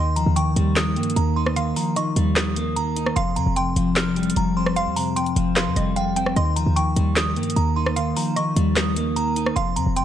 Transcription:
Already playing: D#2 D#3 D#5 C6
0.16 F3 A#5, closed hi-hat
0.26 D#2
0.36 D#3 G5 C#6, closed hi-hat
0.56 D#2 G3, closed hi-hat
0.76 D#3 D#6, snare, clap, closed hi-hat
0.96 G2 A#3, closed hi-hat
1.03 closed hi-hat
1.10 closed hi-hat
1.16 D#2 D#3 A#5, closed hi-hat
1.36 D#4 C6
1.46 cross-stick
1.56 D#3 F5 C6, closed hi-hat
1.76 F3 A#5, open hi-hat
1.96 D#3 D#5 C#6, closed hi-hat
2.16 D#2 G3, closed hi-hat
2.36 D#3 D#6, snare, clap, closed hi-hat
2.56 A#3, closed hi-hat
2.76 D#3 A#5, closed hi-hat
2.96 D#4, closed hi-hat
3.06 cross-stick
3.16 F1 F2 F5 C6, closed hi-hat
3.36 F2 C3 A#5, closed hi-hat
3.46 F1
3.56 F2 G5 C6, closed hi-hat
3.76 F1 F3, closed hi-hat
3.96 F6, snare, clap, closed hi-hat
4.16 G3, closed hi-hat
4.23 closed hi-hat
4.30 closed hi-hat
4.36 F1 F2 A#5, closed hi-hat
4.56 C4 C6
4.66 cross-stick
4.76 F2 F5 C6, closed hi-hat
4.86 F2
4.96 C3 A#5, open hi-hat
5.16 F2 G5 C6, closed hi-hat
5.26 closed hi-hat
5.36 F1 F3, closed hi-hat
5.56 F2 F5 C6, snare, clap, closed hi-hat
5.66 F2
5.76 F1 G3 D#5, closed hi-hat
5.96 F2 F5 G5, closed hi-hat
6.16 C4 G5, closed hi-hat
6.26 cross-stick
6.36 D#2 D#3 D#5 C6, closed hi-hat
6.56 F3 A#5, closed hi-hat
6.66 D#2
6.76 D#3 G5 C#6, closed hi-hat
6.96 D#2 G3, closed hi-hat
7.16 D#3 D#6, snare, clap, closed hi-hat
7.36 G2 A#3, closed hi-hat
7.43 closed hi-hat
7.50 closed hi-hat
7.56 D#2 D#3 A#5, closed hi-hat
7.76 D#4 C6
7.86 cross-stick
7.96 D#3 F5 C6, closed hi-hat
8.16 F3 A#5, open hi-hat
8.36 D#3 D#5 C#6, closed hi-hat
8.56 D#2 G3, closed hi-hat
8.76 D#3 D#6, snare, clap, closed hi-hat
8.96 A#3, closed hi-hat
9.16 D#3 A#5, closed hi-hat
9.36 D#4, closed hi-hat
9.46 cross-stick
9.56 F1 F2 F5 C6, closed hi-hat
9.76 F2 C3 A#5, closed hi-hat
9.86 F1
9.96 F2 G5 C6, closed hi-hat

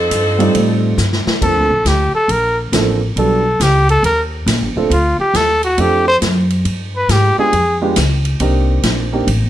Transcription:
Already playing: F3 C4 D#4 A4
0.11 G2, hi-hat pedal, ride
0.39 G3 A3 C4 D#4 F4, ride
0.54 A2, ride
0.98 G2, snare, hi-hat pedal
1.13 snare
1.27 muted upright bass stroke, snare
1.41 F2 F3 A#3 C4 D4 A4, kick, crash
1.56 D2
1.70 A#1
1.85 D2 G4, snare, hi-hat pedal, ride
2.15 A4
2.28 A#1 A#4, ride
2.72 A1 F3 A#3 C4 D4 A4, snare, hi-hat pedal, ride
3.16 B1 G3 B3 D4 F#4 A4, ride
3.60 C#2 G4, snare, hi-hat pedal, ride
3.89 A4, ride
4.03 D#2 A#4, ride
4.46 A#1, snare, hi-hat pedal, ride
4.62 G1
4.76 D#1 A3 C4 D4 F4 A4
4.90 D2 F4, ride
5.19 G4, muted upright bass stroke
5.34 D#2 A4, snare, hi-hat pedal, ride
5.63 F#4, ride
5.78 F2 A3 C4 D4 F4 G4 A4, ride
6.08 C5
6.22 F#2, snare, hi-hat pedal, ride
6.50 ride
6.65 G2, ride
6.97 B4
7.09 G#2 G4, snare, hi-hat pedal, ride
7.38 G#3 B3 D4 F4 G4 G#4, muted upright bass stroke
7.53 F2, ride
7.81 G#3 B3 D4 F4 G4
7.96 C#2, snare, hi-hat pedal, ride
8.25 ride
8.40 C2 A#3 C4 D4 D#4 G4, ride
8.83 A#1, snare, hi-hat pedal, ride
9.13 A#3 C4 D4 D#4 G4
9.27 A1, ride
9.41 G1

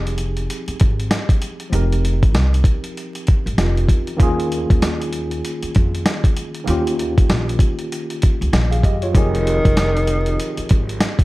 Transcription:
Already playing: F1 F3 C4 D#4 G4 G#4
0.07 closed hi-hat
0.18 closed hi-hat
0.37 closed hi-hat
0.50 closed hi-hat
0.68 muted upright bass stroke, closed hi-hat
0.80 G#1, kick, closed hi-hat
1.00 closed hi-hat
1.11 snare, closed hi-hat
1.29 kick, closed hi-hat
1.42 closed hi-hat
1.60 closed hi-hat
1.70 F1 F3 C4 D#4, closed hi-hat
1.74 G4 A#4
1.92 closed hi-hat
2.05 closed hi-hat
2.23 kick, closed hi-hat
2.34 C2, snare, closed hi-hat
2.54 closed hi-hat
2.64 kick, closed hi-hat
2.84 closed hi-hat
2.97 closed hi-hat
3.15 closed hi-hat
3.27 kick, closed hi-hat
3.46 G#1, closed hi-hat
3.58 F1 C4 D#4 F4 G4 A#4, snare, closed hi-hat
3.77 closed hi-hat
3.88 E2, kick, closed hi-hat
4.07 closed hi-hat
4.17 D#2 D#3 A#3 C#4, kick, closed hi-hat
4.21 F4 G#4
4.40 closed hi-hat
4.52 closed hi-hat
4.70 D#2, kick, closed hi-hat
4.82 snare, closed hi-hat
5.02 closed hi-hat
5.13 closed hi-hat
5.31 closed hi-hat
5.45 closed hi-hat
5.63 muted upright bass stroke, closed hi-hat
5.75 F2, kick, closed hi-hat
5.95 closed hi-hat
6.06 snare, closed hi-hat
6.24 kick, closed hi-hat
6.37 closed hi-hat
6.55 closed hi-hat
6.64 D#2 D#3 A#3 C#4, closed hi-hat
6.69 F4 G4
6.87 closed hi-hat
6.99 closed hi-hat
7.18 kick, closed hi-hat
7.29 A#1, snare, closed hi-hat
7.49 closed hi-hat
7.59 kick, closed hi-hat
7.79 closed hi-hat
7.92 closed hi-hat
8.10 closed hi-hat
8.22 kick, closed hi-hat
8.41 C#2, closed hi-hat
8.53 A#1, snare, closed hi-hat
8.71 G#4 F5, closed hi-hat
8.83 F#2 G4 D#5, kick, closed hi-hat
9.02 F4 C#5, closed hi-hat
9.12 F1 D#3 F3 C4 D#4, kick, closed hi-hat
9.16 G4 G#4
9.35 closed hi-hat
9.47 closed hi-hat
9.65 F1, kick, closed hi-hat
9.77 snare, closed hi-hat
9.97 closed hi-hat
10.07 closed hi-hat
10.26 closed hi-hat
10.40 closed hi-hat
10.57 muted upright bass stroke, closed hi-hat
10.69 G#1, kick, closed hi-hat
10.89 closed hi-hat
11.00 snare, closed hi-hat
11.19 kick, closed hi-hat

